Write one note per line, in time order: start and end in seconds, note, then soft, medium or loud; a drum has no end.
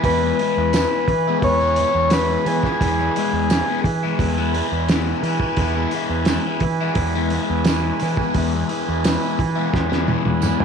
0.00 0.31 E2 medium
0.00 10.65 E4 medium
0.00 10.65 B4 medium
0.00 10.65 G#5 medium
0.00 10.65 B5 medium
0.00 kick medium
0.00 open hi-hat medium
0.05 0.40 E3 medium
0.05 0.25 G#3 medium
0.05 0.23 B3 medium
0.05 0.22 E4 medium
0.05 1.39 B4 medium
0.23 0.41 G#3 medium
0.23 0.42 B3 medium
0.23 0.43 E4 medium
0.39 0.73 E3 medium
0.39 0.74 G#3 medium
0.39 0.75 B3 medium
0.39 0.75 E4 medium
0.39 open hi-hat soft
0.57 0.84 E2 medium
0.73 1.08 E3 medium
0.73 0.95 G#3 medium
0.73 0.94 B3 medium
0.73 0.91 E4 medium
0.73 snare medium
0.73 open hi-hat medium
0.73 tambourine medium
0.92 1.09 G#3 medium
0.92 1.10 B3 medium
0.92 1.09 E4 medium
1.08 1.35 E3 medium
1.08 muted overdriven electric guitar stroke soft
1.08 kick medium
1.08 open hi-hat soft
1.27 1.63 G#3 medium
1.27 1.62 B3 medium
1.27 1.60 E4 medium
1.42 1.83 E2 medium
1.42 2.14 C#5 medium
1.42 kick loud
1.42 open hi-hat medium
1.61 1.79 G#3 medium
1.61 1.80 B3 medium
1.61 1.81 E4 medium
1.76 2.11 E3 medium
1.76 2.12 G#3 medium
1.76 open hi-hat soft
1.80 2.13 B3 medium
1.80 2.13 E4 medium
1.94 2.35 E2 medium
2.10 2.46 E3 medium
2.10 2.47 G#3 medium
2.10 2.47 B3 medium
2.10 2.48 E4 loud
2.10 2.48 B4 medium
2.10 snare loud
2.10 open hi-hat medium
2.10 tambourine medium
2.46 2.60 E3 medium
2.46 2.81 E3 medium
2.46 2.66 G#3 medium
2.46 2.65 B3 medium
2.46 2.63 E4 medium
2.46 3.81 G#4 medium
2.46 open hi-hat medium
2.63 2.82 G#3 soft
2.63 2.82 B3 medium
2.63 2.84 E4 medium
2.63 kick medium
2.63 snare soft
2.81 3.08 E2 medium
2.81 3.16 E3 medium
2.81 3.01 G#3 medium
2.81 3.00 B3 medium
2.81 2.99 E4 loud
2.81 kick loud
2.81 open hi-hat medium
2.99 3.17 G#3 medium
2.99 3.18 B3 medium
2.99 3.19 E4 medium
3.16 3.49 E3 medium
3.16 3.50 G#3 medium
3.16 3.51 B3 medium
3.16 3.52 E4 medium
3.16 open hi-hat soft
3.33 3.60 E2 medium
3.50 3.85 E3 medium
3.50 3.70 G#3 medium
3.50 3.69 B3 medium
3.50 3.67 E4 medium
3.50 snare loud
3.50 open hi-hat medium
3.50 tambourine medium
3.68 3.85 G#3 medium
3.68 3.85 B3 medium
3.68 3.86 E4 medium
3.84 4.12 E3 medium
3.84 muted overdriven electric guitar stroke soft
3.84 kick medium
3.84 open hi-hat soft
4.03 4.39 G#3 medium
4.03 4.38 B3 medium
4.03 4.37 E4 medium
4.19 4.60 E2 medium
4.19 kick medium
4.19 open hi-hat medium
4.37 4.55 G#3 medium
4.37 4.56 B3 medium
4.37 4.57 E4 medium
4.55 4.88 E3 medium
4.55 4.90 G#3 medium
4.55 4.91 B3 medium
4.55 4.92 E4 medium
4.55 open hi-hat soft
4.72 5.13 E2 medium
4.89 5.25 E3 medium
4.89 5.26 G#3 medium
4.89 5.27 B3 medium
4.89 5.28 E4 medium
4.89 snare loud
4.89 open hi-hat medium
4.89 tambourine medium
5.23 5.37 E3 medium
5.23 5.59 E3 medium
5.23 5.43 G#3 medium
5.23 open hi-hat soft
5.27 5.43 B3 medium
5.27 5.41 E4 medium
5.40 5.60 B3 medium
5.40 5.62 E4 medium
5.40 kick medium
5.44 5.60 G#3 medium
5.57 5.85 E2 loud
5.57 5.93 E3 medium
5.57 5.77 G#3 medium
5.57 kick loud
5.57 open hi-hat medium
5.61 5.76 B3 loud
5.61 5.75 E4 loud
5.76 5.94 G#3 medium
5.76 5.95 B3 medium
5.76 5.95 E4 medium
5.91 6.28 E3 medium
5.91 6.29 G#3 medium
5.91 6.30 B3 medium
5.91 open hi-hat soft
5.95 6.31 E4 medium
6.09 6.37 E2 medium
6.25 6.64 E3 medium
6.25 snare loud
6.25 open hi-hat medium
6.25 tambourine medium
6.29 6.49 G#3 medium
6.29 6.47 B3 medium
6.29 6.46 E4 medium
6.46 6.64 G#3 medium
6.46 6.64 B3 medium
6.46 6.64 E4 medium
6.60 6.89 E3 medium
6.60 kick medium
6.60 open hi-hat soft
6.64 muted overdriven electric guitar stroke soft
6.81 7.17 G#3 medium
6.81 7.16 B3 medium
6.81 7.15 E4 medium
6.95 7.37 E2 medium
6.95 kick loud
6.95 open hi-hat medium
7.15 7.33 G#3 medium
7.15 7.34 B3 medium
7.15 7.35 E4 medium
7.30 7.67 E3 medium
7.30 7.68 G#3 medium
7.30 open hi-hat soft
7.35 7.70 B3 medium
7.35 7.70 E4 medium
7.49 7.90 E2 medium
7.65 8.01 E3 medium
7.65 snare loud
7.65 open hi-hat medium
7.65 tambourine medium
7.69 8.02 G#3 medium
7.69 8.03 B3 medium
7.69 8.04 E4 medium
8.00 8.35 E3 medium
8.00 8.15 E3 medium
8.00 8.21 G#3 medium
8.00 8.20 B3 medium
8.00 open hi-hat medium
8.04 8.18 E4 medium
8.17 8.36 B3 medium
8.17 8.37 E4 medium
8.17 kick medium
8.22 8.36 G#3 medium
8.34 8.62 E2 medium
8.34 8.69 E3 medium
8.34 8.56 G#3 medium
8.34 8.54 B3 medium
8.34 8.52 E4 loud
8.34 kick medium
8.34 open hi-hat medium
8.54 8.70 G#3 medium
8.54 8.71 B3 medium
8.54 8.71 E4 medium
8.69 9.03 E3 medium
8.69 9.04 G#3 medium
8.69 9.04 B3 medium
8.69 9.06 E4 medium
8.69 open hi-hat soft
8.88 9.15 E2 medium
9.04 9.39 E3 medium
9.04 9.23 G#3 medium
9.04 9.22 B3 medium
9.04 9.20 E4 medium
9.04 snare medium
9.04 open hi-hat medium
9.04 tambourine medium
9.22 9.39 G#3 medium
9.22 9.40 B3 medium
9.22 9.40 E4 medium
9.39 9.66 E3 medium
9.39 muted overdriven electric guitar stroke soft
9.39 kick medium
9.39 open hi-hat soft
9.56 9.91 G#3 medium
9.56 9.90 B3 medium
9.56 9.88 E4 medium
9.74 10.15 E2 medium
9.74 kick medium
9.74 snare soft
9.89 10.07 G#3 medium
9.89 10.07 B3 medium
9.89 10.08 E4 medium
9.89 snare medium
10.07 10.39 E3 medium
10.07 10.41 G#3 medium
10.07 10.42 B3 medium
10.07 10.43 E4 medium
10.07 high tom medium
10.25 10.53 E2 medium
10.25 high tom medium
10.41 10.65 E3 medium
10.41 10.65 G#3 medium
10.41 10.65 B3 medium
10.41 10.65 E4 medium
10.41 mid tom medium
10.41 tambourine medium
10.60 10.65 G#2 medium
10.60 mid tom medium